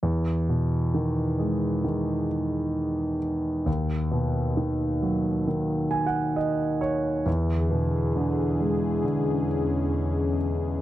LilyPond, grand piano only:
<<
  \new Staff \with { instrumentName = "Grand piano" } { \time 4/4 \key e \major \tempo 4 = 67 r1 | r2 \tuplet 3/2 { r8. gis''16 fis''8 } dis''8 cis''8 | r1 | }
  \new Staff \with { instrumentName = "Grand piano" } { \clef bass \time 4/4 \key e \major e,8 b,8 dis8 gis8 dis2 | dis,8 b,8 dis8 fis8 dis2 | e,8 b,8 d8 gis8 d2 | }
>>